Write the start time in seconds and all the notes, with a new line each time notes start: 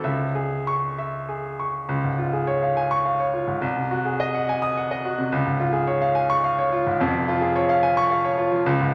0.04 C#2 E5
0.35 G#4
0.67 C#6
0.98 E5
1.29 G#4
1.60 C#6
1.89 C#2
2.04 G#2
2.18 F4
2.33 G#4
2.47 C#5
2.63 F5
2.77 G#5
2.91 C#6
3.05 F5
3.20 C#5
3.33 F4
3.47 G#2
3.62 C2
3.77 C3
3.91 F#4
4.05 G#4
4.20 D#5
4.35 F#5
4.49 G#5
4.62 D#6
4.77 F#5
4.91 D#5
5.05 F#4
5.18 C3
5.32 C#2
5.46 G#2
5.60 F4
5.73 G#4
5.87 C#5
6.02 F5
6.15 G#5
6.30 C#6
6.44 F5
6.59 C#5
6.73 F4
6.86 G#2
7.00 F1 F2
7.14 F3
7.28 F4
7.41 G#4
7.56 C#5
7.69 F5
7.83 G#5
7.97 C#6
8.11 F5
8.24 C#5
8.38 F4
8.52 F3
8.66 C#2
8.80 G#2